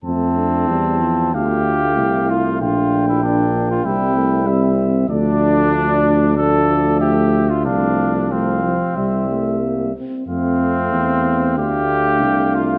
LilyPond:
<<
  \new Staff \with { instrumentName = "Trumpet" } { \time 4/4 \key f \major \tempo 4 = 94 a''2 f''2 | g''2 g''4 e''4 | d''2 d''4 e''4 | f''4 f''4 e''4. r8 |
f''2 f''2 | }
  \new Staff \with { instrumentName = "Flugelhorn" } { \time 4/4 \key f \major c'2 g'4. f'8 | f'8. e'16 d'8. f'16 e'4. r8 | d'2 a'4 g'8. f'16 | d'4 c'2 r4 |
c'2 g'4. f'8 | }
  \new Staff \with { instrumentName = "French horn" } { \time 4/4 \key f \major c'8 d'8 e'4 f'8 f'8 e'4 | d'4 d'4 c'4 c'4 | a2 a2 | a4 a8 f8 g8 a8 bes8 c'8 |
c'2 d'2 | }
  \new Staff \with { instrumentName = "Trombone" } { \clef bass \time 4/4 \key f \major a4 g8 f8 a2~ | a4 bes4 g8 a8 g4 | f2 f2 | f4 f4 g4. r8 |
a2 a2 | }
  \new Staff \with { instrumentName = "Tuba" } { \clef bass \time 4/4 \key f \major f,4 e,4 d,4 c,4 | bes,,2 c,2 | d,1 | c,2 c,4. r8 |
f,4 e,4 d,4 c,4 | }
>>